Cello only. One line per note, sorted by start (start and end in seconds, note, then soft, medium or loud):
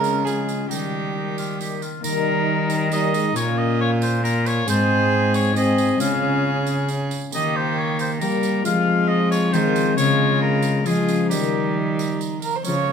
0.00 0.66 C#3 medium
0.71 1.83 D#3 medium
2.05 3.33 D#3 medium
3.35 4.65 A#2 medium
4.69 5.98 G#2 medium
6.00 7.11 C#3 medium
7.34 8.23 D#3 medium
8.22 8.65 G3 medium
8.66 9.55 F3 medium
9.53 9.97 D#3 medium
9.98 10.84 C#3 medium
10.85 11.33 F3 medium
11.31 12.45 D#3 medium
12.65 12.92 C#3 medium